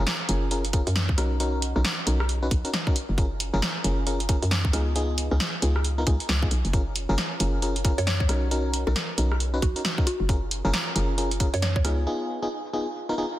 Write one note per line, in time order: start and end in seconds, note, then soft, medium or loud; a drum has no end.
0.07 snare loud
0.07 closed hi-hat medium
0.29 0.85 F#1 medium
0.29 0.49 C#4 medium
0.29 0.49 F4 medium
0.29 0.49 G#4 medium
0.29 0.49 A#4 medium
0.29 closed hi-hat loud
0.51 0.64 C#4 medium
0.51 0.64 F4 medium
0.51 0.64 G#4 medium
0.51 0.64 A#4 medium
0.51 closed hi-hat medium
0.65 closed hi-hat medium
0.73 0.81 C#4 medium
0.73 0.81 F4 medium
0.73 0.81 G#4 medium
0.73 0.81 A#4 medium
0.73 kick loud
0.73 closed hi-hat loud
0.87 1.16 F#2 loud
0.87 closed hi-hat medium
0.96 snare loud
0.96 closed hi-hat medium
1.09 kick medium
1.18 1.74 B1 medium
1.18 1.38 C#4 medium
1.18 1.38 D#4 medium
1.18 1.38 F#4 medium
1.18 1.38 A#4 medium
1.18 cross-stick medium
1.18 closed hi-hat loud
1.40 1.73 C#4 medium
1.40 1.73 D#4 medium
1.40 1.73 F#4 medium
1.40 1.73 A#4 medium
1.40 closed hi-hat medium
1.62 closed hi-hat loud
1.76 1.84 B1 loud
1.76 1.81 C#4 medium
1.76 1.81 D#4 medium
1.76 1.81 F#4 medium
1.76 1.81 A#4 medium
1.76 cross-stick soft
1.85 snare loud
1.85 closed hi-hat medium
2.07 2.50 B1 loud
2.07 2.20 C#4 medium
2.07 2.20 D#4 medium
2.07 2.20 F#4 medium
2.07 2.20 A#4 medium
2.07 closed hi-hat loud
2.20 cross-stick medium
2.29 closed hi-hat medium
2.42 2.48 C#4 medium
2.42 2.48 D#4 medium
2.42 2.48 F#4 medium
2.42 2.48 B4 medium
2.51 2.63 B1 loud
2.51 kick loud
2.51 closed hi-hat loud
2.65 2.70 C#4 medium
2.65 2.70 D#4 medium
2.65 2.70 F#4 medium
2.65 2.70 A#4 medium
2.65 closed hi-hat medium
2.73 snare loud
2.73 closed hi-hat medium
2.87 2.95 C#4 medium
2.87 2.95 D#4 medium
2.87 2.95 F#4 medium
2.87 2.95 A#4 medium
2.87 kick loud
2.96 closed hi-hat loud
3.09 3.51 F#1 medium
3.18 3.26 C#4 medium
3.18 3.26 F4 medium
3.18 3.26 G#4 medium
3.18 3.26 A#4 medium
3.18 kick loud
3.18 closed hi-hat medium
3.40 closed hi-hat loud
3.54 3.61 F#1 loud
3.54 3.59 C#4 loud
3.54 3.59 F4 medium
3.54 3.59 G#4 medium
3.54 3.59 A#4 loud
3.62 snare loud
3.62 closed hi-hat medium
3.84 4.40 F#1 medium
3.84 4.05 C#4 medium
3.84 4.05 F4 medium
3.84 4.05 G#4 medium
3.84 4.05 A#4 medium
3.84 closed hi-hat loud
4.07 4.20 C#4 medium
4.07 4.20 F4 medium
4.07 4.20 G#4 medium
4.07 4.20 A#4 medium
4.07 closed hi-hat medium
4.20 closed hi-hat medium
4.29 4.37 C#4 medium
4.29 4.37 F4 medium
4.29 4.37 G#4 medium
4.29 4.37 A#4 medium
4.29 kick loud
4.29 closed hi-hat loud
4.42 4.72 F#2 loud
4.42 closed hi-hat medium
4.51 snare loud
4.51 closed hi-hat medium
4.65 kick loud
4.73 5.29 C#2 medium
4.73 4.94 B3 medium
4.73 4.94 D#4 medium
4.73 4.94 F4 medium
4.73 4.94 G#4 medium
4.73 cross-stick medium
4.73 closed hi-hat loud
4.96 5.28 B3 medium
4.96 5.28 D#4 medium
4.96 5.28 F4 medium
4.96 5.28 G#4 medium
4.96 closed hi-hat medium
5.18 closed hi-hat loud
5.31 5.39 C#2 medium
5.31 5.37 B3 medium
5.31 5.37 D#4 medium
5.31 5.37 F4 medium
5.31 5.36 G#4 medium
5.31 cross-stick soft
5.40 snare loud
5.40 closed hi-hat medium
5.62 6.05 C#2 loud
5.62 5.75 B3 medium
5.62 5.75 D#4 medium
5.62 5.75 F4 medium
5.62 5.75 G#4 medium
5.62 closed hi-hat medium
5.76 cross-stick medium
5.84 closed hi-hat medium
5.98 6.03 B3 medium
5.98 6.03 D#4 medium
5.98 6.03 F4 medium
5.98 6.03 A#4 medium
6.07 6.19 C#2 loud
6.07 6.15 B3 medium
6.07 6.15 D#4 medium
6.07 6.15 F4 medium
6.07 6.15 G#4 medium
6.07 kick loud
6.07 closed hi-hat loud
6.20 closed hi-hat medium
6.29 6.49 C#2 medium
6.29 snare loud
6.29 closed hi-hat medium
6.42 6.48 B3 medium
6.42 6.48 D#4 medium
6.42 6.48 F4 medium
6.42 6.48 G#4 medium
6.42 kick loud
6.51 6.63 B1 medium
6.51 closed hi-hat medium
6.65 7.07 F#1 medium
6.65 closed hi-hat soft
6.73 6.81 C#4 medium
6.73 6.81 F4 medium
6.73 6.81 G#4 medium
6.73 6.81 A#4 medium
6.73 kick loud
6.73 closed hi-hat medium
6.96 closed hi-hat loud
7.09 7.17 F#1 loud
7.09 7.14 C#4 loud
7.09 7.14 F4 medium
7.09 7.14 G#4 medium
7.09 7.14 A#4 loud
7.18 snare loud
7.18 closed hi-hat medium
7.40 7.96 F#1 loud
7.40 7.60 C#4 medium
7.40 7.60 F4 medium
7.40 7.60 G#4 medium
7.40 7.60 A#4 medium
7.40 closed hi-hat loud
7.62 7.75 C#4 medium
7.62 7.75 F4 medium
7.62 7.75 G#4 medium
7.62 7.75 A#4 medium
7.62 closed hi-hat medium
7.76 closed hi-hat medium
7.85 7.93 C#4 medium
7.85 7.93 F4 medium
7.85 7.93 G#4 medium
7.85 7.93 A#4 loud
7.85 kick loud
7.85 closed hi-hat loud
7.98 8.28 F#2 loud
7.98 8.05 C#5 medium
7.98 closed hi-hat medium
8.07 8.16 C#5 medium
8.07 snare loud
8.07 closed hi-hat medium
8.20 8.26 C#5 medium
8.20 kick loud
8.29 8.85 B1 medium
8.29 8.49 C#4 medium
8.29 8.49 D#4 medium
8.29 8.49 F#4 medium
8.29 8.49 A#4 medium
8.29 cross-stick medium
8.29 closed hi-hat loud
8.51 8.84 C#4 medium
8.51 8.84 D#4 medium
8.51 8.84 F#4 medium
8.51 8.84 A#4 medium
8.51 closed hi-hat medium
8.74 closed hi-hat loud
8.87 8.95 B1 loud
8.87 8.92 C#4 medium
8.87 8.92 D#4 medium
8.87 8.92 F#4 medium
8.87 8.92 A#4 medium
8.87 9.48 A#4 medium
8.87 cross-stick soft
8.96 snare loud
8.96 closed hi-hat medium
9.18 9.61 B1 loud
9.18 9.31 C#4 medium
9.18 9.31 D#4 medium
9.18 9.31 F#4 medium
9.18 9.31 A#4 medium
9.18 closed hi-hat loud
9.32 cross-stick medium
9.40 closed hi-hat medium
9.54 9.59 C#4 medium
9.54 9.59 D#4 medium
9.54 9.59 F#4 medium
9.54 9.59 B4 medium
9.62 9.74 B1 loud
9.62 9.82 F#4 medium
9.62 kick loud
9.62 closed hi-hat loud
9.76 9.81 C#4 medium
9.76 9.81 D#4 medium
9.76 9.81 F#4 medium
9.76 9.81 A#4 medium
9.76 closed hi-hat medium
9.85 snare loud
9.85 closed hi-hat medium
9.98 10.06 C#4 medium
9.98 10.06 D#4 medium
9.98 10.06 F#4 medium
9.98 10.06 A#4 medium
9.98 kick loud
10.07 10.34 F#4 medium
10.07 closed hi-hat loud
10.20 10.62 F#1 medium
10.29 10.37 C#4 medium
10.29 10.37 F4 medium
10.29 10.37 G#4 medium
10.29 10.37 A#4 medium
10.29 kick loud
10.29 closed hi-hat medium
10.51 closed hi-hat loud
10.65 10.72 F#1 loud
10.65 10.70 C#4 medium
10.65 10.70 F4 medium
10.65 10.70 G#4 medium
10.65 10.70 A#4 loud
10.74 snare loud
10.74 closed hi-hat medium
10.96 11.51 F#1 loud
10.96 11.16 C#4 medium
10.96 11.16 F4 medium
10.96 11.16 G#4 medium
10.96 11.16 A#4 medium
10.96 closed hi-hat loud
11.18 11.31 C#4 medium
11.18 11.31 F4 medium
11.18 11.31 G#4 medium
11.18 11.31 A#4 medium
11.18 closed hi-hat medium
11.31 closed hi-hat medium
11.40 11.48 C#4 medium
11.40 11.48 F4 medium
11.40 11.48 G#4 medium
11.40 11.48 A#4 medium
11.40 kick medium
11.40 closed hi-hat loud
11.54 11.83 F#2 loud
11.54 11.61 C#5 medium
11.54 closed hi-hat medium
11.62 11.71 C#5 loud
11.62 snare loud
11.62 closed hi-hat medium
11.76 11.81 C#5 medium
11.76 kick loud
11.84 12.07 C#2 medium
11.84 12.05 B3 medium
11.84 12.05 D#4 medium
11.84 12.05 F4 medium
11.84 12.05 G#4 medium
11.84 cross-stick medium
11.84 closed hi-hat loud
12.07 12.39 B3 medium
12.07 12.39 D#4 medium
12.07 12.39 F4 medium
12.07 12.39 G#4 medium
12.42 12.48 B3 medium
12.42 12.48 D#4 medium
12.42 12.48 F4 medium
12.42 12.48 G#4 medium
12.73 12.86 B3 medium
12.73 12.86 D#4 medium
12.73 12.86 F4 medium
12.73 12.86 G#4 medium
13.09 13.14 B3 medium
13.09 13.14 D#4 medium
13.09 13.14 F4 medium
13.09 13.14 A#4 medium
13.18 13.26 B3 medium
13.18 13.26 D#4 medium
13.18 13.26 F4 medium
13.18 13.26 G#4 medium